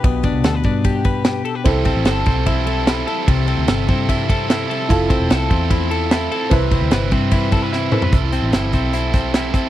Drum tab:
RD |x-x-x-x-x-x-x-x-|x-x-x-x-x-x-x-x-|x-x-x-x-x-x-x-x-|x-x-x-x-x-x-x-x-|
HH |----------------|----------------|----------------|----------------|
SD |----o-------o---|----o-------o---|----o-------o---|----o-------o---|
T2 |----------------|----------------|----------------|----------------|
FT |----------------|----------------|----------------|----------------|
BD |o-o---o-o-o-----|o-o---o-o-------|o-----o-o-o-----|o-o---o-o-------|

RD |x-x-x-x-x-x-----|----------------|
HH |----------------|x-x-x-x-x-x-x-x-|
SD |----o-------o---|----o-------o---|
T2 |--------------o-|----------------|
FT |---------------o|----------------|
BD |o-o---o-o-o-----|o-----o---o---o-|